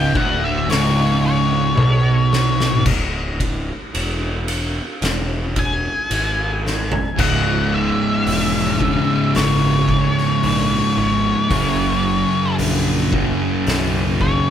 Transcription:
0.00 0.11 C#1 loud
0.00 0.13 C#2 loud
0.00 0.14 G5 medium
0.14 0.65 D1 loud
0.14 0.67 D2 loud
0.14 0.42 F#5 loud
0.14 kick loud
0.44 0.69 E5 loud
0.68 1.73 C#1 medium
0.68 1.75 C#2 loud
0.68 1.22 C#5 loud
0.68 snare loud
0.68 open hi-hat medium
1.26 2.83 C#5 loud
1.77 2.81 B1 loud
1.77 2.83 B2 loud
1.77 high tom medium
2.33 snare loud
2.60 snare loud
2.86 3.70 C#1 loud
2.86 kick loud
2.86 crash loud
3.40 kick medium
3.40 ride medium
3.94 4.79 E1 medium
3.94 ride loud
4.48 ride medium
5.01 5.86 E1 loud
5.01 snare loud
5.01 ride medium
5.56 7.19 G#5 loud
5.56 kick medium
5.56 ride medium
6.10 6.95 G#1 medium
6.10 ride loud
6.66 snare medium
6.92 floor tom loud
7.16 7.90 C#1 medium
7.16 8.76 C#2 medium
7.16 8.77 G#2 loud
7.16 8.77 C#3 medium
7.16 7.74 F#5 loud
7.16 kick loud
7.16 crash loud
7.74 9.36 E5 medium
8.26 8.98 E1 loud
8.26 open hi-hat medium
8.79 11.48 C#2 medium
8.79 11.47 G#2 medium
8.79 11.47 C#3 loud
8.79 kick medium
9.35 10.07 F#1 medium
9.35 10.97 C#5 loud
9.35 snare loud
9.35 open hi-hat medium
9.89 kick medium
10.18 snare soft
10.43 10.79 A#1 medium
10.43 open hi-hat medium
10.97 11.33 G#1 medium
10.97 12.55 C#5 medium
11.49 12.23 F#1 loud
11.49 13.09 F#2 medium
11.49 13.10 C#3 loud
11.49 13.11 F#3 loud
11.49 kick loud
11.49 open hi-hat medium
12.59 13.31 A#1 medium
12.59 open hi-hat medium
13.12 14.50 F#2 medium
13.12 14.50 C#3 medium
13.12 14.50 F#3 medium
13.12 kick medium
13.67 14.39 B1 medium
13.67 snare loud
13.67 open hi-hat medium
14.21 14.50 C#5 loud
14.21 kick medium

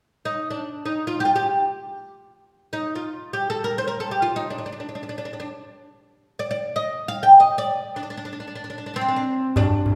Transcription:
0.25 0.50 D#4 medium
0.50 0.85 D4 soft
0.86 1.07 D#4 medium
1.07 1.20 F4 medium
1.20 1.25 G4 medium
1.25 1.33 F4 medium
1.36 2.13 G4 medium
2.73 2.95 D#4 medium
2.95 3.33 F4 medium
3.33 3.48 G4 medium
3.50 3.64 A4 medium
3.64 3.77 A#4 medium
3.78 3.87 C5 medium
3.88 3.99 A#4 medium
4.00 4.11 A4 medium
4.11 4.23 G4 medium
4.22 4.35 F4 medium
4.36 4.50 D#4 medium
4.50 4.57 D4 soft
4.58 4.64 D4 soft
4.66 4.71 D4 soft
4.73 4.79 D4 soft
4.80 4.87 D4 soft
4.89 4.94 D4 soft
4.95 5.02 D4 soft
5.03 5.08 D4 soft
5.09 5.16 D4 soft
5.18 5.24 D4 soft
5.25 5.32 D4 soft
5.33 5.39 D4 soft
5.40 5.46 D4 medium
6.39 6.49 D5 medium
6.51 6.76 D5 medium
6.76 7.08 D#5 medium
7.08 7.22 F5 medium
7.23 7.40 G5 medium
7.40 7.58 D#5 medium
7.58 7.97 D5 medium
7.96 8.02 D4 medium
8.03 8.09 D4 soft
8.10 8.16 D4 medium
8.17 8.24 D4 soft
8.25 8.31 D4 soft
8.33 8.39 D4 soft
8.40 8.46 D4 soft
8.48 8.54 D4 soft
8.55 8.63 D4 soft
8.64 8.69 D4 soft
8.70 8.77 D4 soft
8.78 8.85 D4 soft
8.86 8.92 D4 soft
8.94 9.58 C4 medium
8.94 9.00 D4 soft
9.01 9.07 D4 medium
9.08 9.15 D4 soft
9.16 9.23 D4 medium
9.56 9.95 D4 medium
9.56 darbuka dum medium
9.86 darbuka dum medium

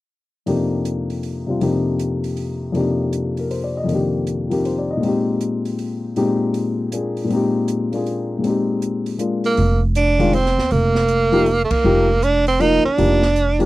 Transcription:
0.46 1.60 F2 soft
0.46 1.45 C3 soft
0.46 1.60 A#3 soft
0.46 1.48 D4 soft
0.46 1.60 D#4 soft
0.46 1.61 G4 soft
0.46 open hi-hat soft
0.85 closed hi-hat soft
1.10 open hi-hat soft
1.23 open hi-hat soft
1.47 1.60 C3 soft
1.47 1.61 G3 soft
1.47 1.62 C4 soft
1.47 1.60 D4 soft
1.47 1.62 F4 soft
1.61 2.71 F2 soft
1.61 2.72 C3 soft
1.61 2.73 A#3 soft
1.61 2.74 D4 soft
1.61 2.75 D#4 soft
1.61 2.76 G4 soft
1.61 open hi-hat soft
1.99 closed hi-hat soft
2.24 open hi-hat soft
2.37 open hi-hat soft
2.72 3.82 F2 soft
2.72 3.85 C3 soft
2.72 3.86 A#3 soft
2.72 3.89 D4 soft
2.72 open hi-hat soft
2.77 3.90 D#4 soft
2.77 3.90 G4 soft
3.13 closed hi-hat soft
3.37 3.58 A#4 soft
3.37 open hi-hat soft
3.51 3.74 C5 soft
3.51 open hi-hat soft
3.64 3.83 D5 soft
3.77 3.96 D#5 soft
3.84 5.00 F2 soft
3.84 5.01 C3 soft
3.88 5.02 A#3 soft
3.88 5.03 D4 soft
3.88 open hi-hat soft
3.92 5.04 D#3 soft
3.92 4.51 G4 soft
4.27 closed hi-hat soft
4.49 5.02 F3 soft
4.49 5.01 C4 soft
4.49 5.03 D#4 soft
4.49 5.03 F4 soft
4.49 5.03 G4 soft
4.49 4.71 A#4 soft
4.49 open hi-hat soft
4.65 4.88 C5 soft
4.65 open hi-hat soft
4.78 4.97 D5 soft
4.91 5.10 D#5 soft
4.97 6.14 A#2 soft
4.97 6.15 G#3 soft
5.03 6.16 C4 soft
5.03 6.16 D#4 soft
5.03 open hi-hat soft
5.08 6.16 G4 soft
5.41 closed hi-hat soft
5.65 open hi-hat soft
5.79 open hi-hat soft
6.16 7.23 A#2 soft
6.16 7.26 G#3 soft
6.16 7.29 C4 soft
6.16 7.31 D#4 soft
6.16 7.31 G4 medium
6.16 open hi-hat soft
6.54 open hi-hat soft
6.92 7.30 A#3 soft
6.92 7.31 D4 soft
6.92 7.31 F4 soft
6.92 7.31 G#4 soft
6.92 closed hi-hat soft
7.17 open hi-hat soft
7.25 8.37 A#2 soft
7.25 8.39 G#3 soft
7.30 8.42 C4 soft
7.30 8.45 D#4 soft
7.30 open hi-hat soft
7.36 8.47 G4 medium
7.68 closed hi-hat soft
7.92 8.44 A#3 soft
7.92 8.45 D4 soft
7.92 8.45 F4 soft
7.92 8.45 G#4 soft
7.92 open hi-hat soft
8.06 open hi-hat soft
8.38 9.55 A#2 soft
8.38 9.17 G#3 soft
8.44 9.58 C4 soft
8.44 9.59 D#4 soft
8.44 open hi-hat soft
8.49 9.60 G4 soft
8.82 closed hi-hat soft
9.06 open hi-hat soft
9.18 9.57 G#3 soft
9.18 9.57 A#3 soft
9.18 9.58 D4 soft
9.18 9.58 F4 soft
9.18 closed hi-hat soft
9.44 9.80 A#3 medium
9.44 open hi-hat soft
9.57 10.54 F1 medium
9.57 open hi-hat soft
9.95 10.36 D4 medium
9.95 closed hi-hat soft
10.19 10.31 D#3 medium
10.19 10.32 G#3 medium
10.19 10.32 D4 medium
10.19 10.32 F4 medium
10.19 open hi-hat soft
10.33 10.73 C4 medium
10.33 open hi-hat soft
10.46 snare soft
10.58 10.70 D#2 medium
10.58 snare soft
10.71 11.68 F1 medium
10.71 11.62 A#3 medium
10.71 open hi-hat soft
10.95 snare soft
11.08 closed hi-hat soft
11.32 11.45 F3 medium
11.32 11.45 A#3 medium
11.32 11.46 D#4 medium
11.32 11.46 G4 medium
11.32 open hi-hat soft
11.46 open hi-hat soft
11.64 11.73 A3 medium
11.71 12.25 A#3 medium
11.71 muted upright bass stroke soft
11.71 kick medium
11.71 ride medium
11.84 12.81 F1 medium
11.84 12.07 F3 medium
11.84 12.07 A#3 soft
11.84 12.07 D#4 soft
11.84 12.07 G4 medium
12.22 12.47 D4 medium
12.22 closed hi-hat soft
12.47 12.62 C4 medium
12.47 open hi-hat soft
12.60 12.82 F3 medium
12.60 12.82 A#3 soft
12.60 12.83 D#4 soft
12.60 12.85 D#4 medium
12.60 12.83 A#4 medium
12.60 open hi-hat soft
12.85 13.64 D4 medium
12.85 muted upright bass stroke soft
12.98 13.66 F1 medium
12.98 13.20 F3 medium
12.98 13.20 A#3 soft
12.98 13.20 D#4 soft
12.98 13.20 G4 medium
12.98 open hi-hat soft
13.22 snare soft
13.36 closed hi-hat soft
13.59 13.66 F3 medium
13.59 13.66 A#3 medium
13.59 13.66 D#4 soft
13.59 13.66 G4 medium
13.59 open hi-hat soft

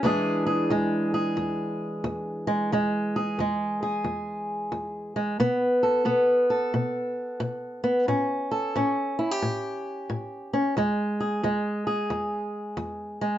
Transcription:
0.03 0.66 E2 medium
0.03 5.40 E3 medium
0.03 0.71 G#3 medium
0.03 2.70 D4 medium
0.03 0.46 G#4 medium
0.46 1.14 G#4 medium
0.70 1.33 E2 medium
0.70 2.46 G#3 medium
1.14 2.69 G#4 medium
1.37 1.99 E2 medium
2.04 2.67 E2 medium
2.47 2.71 G#3 medium
2.72 3.34 E2 medium
2.72 3.39 G#3 medium
3.16 3.81 G#4 medium
3.39 4.01 E2 medium
3.39 5.15 G#3 medium
3.83 5.37 G#4 medium
4.04 4.67 E2 medium
4.72 5.35 E2 medium
5.16 5.40 G#3 medium
5.40 6.02 B2 medium
5.40 6.04 B3 medium
5.83 6.50 A4 soft
6.05 6.68 B2 medium
6.05 7.82 B3 medium
6.50 8.05 A4 medium
6.74 7.36 B2 medium
7.40 8.03 B2 medium
7.84 8.05 B3 medium
8.08 8.70 A2 medium
8.08 8.75 C#4 medium
8.51 9.18 A4 medium
8.76 9.38 A2 medium
8.76 10.52 C#4 medium
9.19 9.31 E4 medium
9.31 10.77 G4 soft
9.42 10.05 A2 medium
10.10 10.72 A2 medium
10.53 10.74 C#4 medium
10.77 11.39 E2 medium
10.77 11.44 G#3 medium
11.20 11.86 G#4 medium
11.43 12.06 E2 medium
11.43 13.21 G#3 medium
11.87 13.38 G#4 medium
12.10 12.72 E2 medium
12.77 13.38 E2 medium
13.21 13.38 G#3 medium

